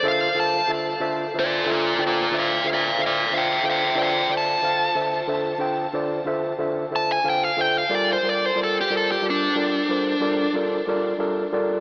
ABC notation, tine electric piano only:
X:1
M:12/8
L:1/8
Q:3/8=61
K:Dm
V:1 name="Tine electric piano"
[D,FAce] [D,FAcf] [D,FAce] [D,FAce] [D,FAce] [D,FAce] [D,FAcg] [D,FAce] [D,FAce] [D,FAce] [D,FAce] [D,FAce] | [D,FAcd] [D,FAcd] [D,FAcf] [D,FAce] [D,FAce] [D,FAcg] [D,FAcd] [D,FAce] [D,FAce] [D,FAce] [D,FAcf] [D,FAce] | [G,FABd] [G,FABd] [G,FABd] [G,FABd] [G,FABd] [G,FABd] [G,FABc] [G,FABd] [G,FABd] [G,FABd] [G,FABd] [G,FABd] |]